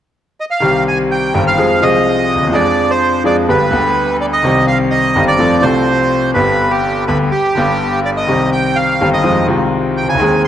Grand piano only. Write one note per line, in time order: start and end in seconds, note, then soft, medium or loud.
0.60 1.31 C2 medium
0.60 1.31 C3 medium
0.60 1.30 D#3 medium
0.60 1.30 G3 soft
0.60 1.31 C4 soft
0.64 1.32 G4 medium
1.34 1.55 G1 medium
1.34 1.54 G2 medium
1.34 1.54 D#3 medium
1.34 1.54 G3 soft
1.34 1.55 C4 soft
1.34 1.54 G4 medium
1.57 1.78 F2 medium
1.57 1.78 F3 medium
1.57 1.78 G#3 medium
1.57 1.78 C4 soft
1.57 1.78 G#4 medium
1.81 2.51 C2 medium
1.81 2.51 C3 medium
1.81 2.50 F3 medium
1.81 2.50 G#3 soft
1.81 2.51 C4 soft
1.81 2.51 G#4 medium
2.35 2.42 D2 soft
2.42 2.48 D#2 soft
2.47 2.53 E2 medium
2.51 3.21 F2 medium
2.51 3.21 F3 medium
2.51 3.21 G#3 soft
2.51 3.22 D4 soft
2.51 3.22 G#4 medium
3.24 3.45 F2 medium
3.24 3.45 F3 medium
3.24 3.45 G#3 medium
3.24 3.45 D4 soft
3.24 3.45 G#4 medium
3.49 3.69 G1 medium
3.49 3.69 G2 medium
3.49 3.69 D3 medium
3.49 3.69 G3 soft
3.49 3.69 B3 soft
3.49 3.69 G4 medium
3.70 4.41 D2 medium
3.70 4.40 D3 medium
3.70 4.40 G3 medium
3.70 4.41 B3 medium
3.74 4.42 G4 medium
4.42 5.12 C2 medium
4.42 5.13 C3 medium
4.42 5.11 D#3 medium
4.42 5.12 G3 medium
4.42 5.13 C4 soft
4.47 5.14 G4 medium
5.15 5.36 G1 medium
5.15 5.36 G2 medium
5.15 5.36 D#3 medium
5.15 5.36 G3 soft
5.15 5.36 C4 medium
5.15 5.36 G4 medium
5.39 5.59 F2 medium
5.39 5.60 F3 medium
5.39 5.59 A3 soft
5.39 5.60 C4 soft
5.39 5.60 A4 medium
5.61 6.32 C2 medium
5.61 6.32 C3 medium
5.61 6.31 F3 medium
5.61 6.31 A3 medium
5.61 6.32 C4 medium
5.61 6.33 A4 medium
6.34 7.04 G1 medium
6.34 7.04 G2 medium
6.34 7.03 D3 medium
6.34 7.04 G3 medium
6.34 7.04 B3 soft
6.34 7.05 G4 medium
7.08 7.28 D2 medium
7.08 7.28 D3 medium
7.08 7.28 G3 soft
7.08 7.28 B3 soft
7.08 7.28 G4 medium
7.55 8.25 G1 medium
7.55 8.25 G2 medium
7.55 8.24 D3 medium
7.55 8.25 G3 soft
7.55 8.26 B3 soft
7.59 8.26 G4 medium
8.26 8.97 C2 medium
8.26 8.97 C3 medium
8.26 8.96 D#3 medium
8.26 8.97 G3 soft
8.26 8.97 C4 medium
8.31 8.98 G4 medium
9.01 9.21 G1 medium
9.01 9.21 G2 medium
9.01 9.21 D#3 soft
9.01 9.21 G3 soft
9.01 9.21 C4 soft
9.01 9.21 G4 medium
9.23 9.45 F2 medium
9.23 9.44 D#3 soft
9.23 9.44 F3 medium
9.23 9.45 G#3 soft
9.23 9.45 C4 soft
9.23 9.45 F4 medium
9.46 10.02 C2 medium
9.46 10.17 C3 medium
9.46 10.16 D#3 medium
9.46 10.17 G#3 medium
9.46 10.17 C4 medium
9.46 10.18 F4 medium
10.03 10.09 C2 soft
10.09 10.15 C#2 soft
10.14 10.21 D2 medium
10.14 10.19 D#3 medium
10.19 10.48 D#2 medium
10.19 10.48 D#3 medium
10.19 10.48 G#3 soft
10.19 10.48 C4 soft
10.19 10.48 G#4 medium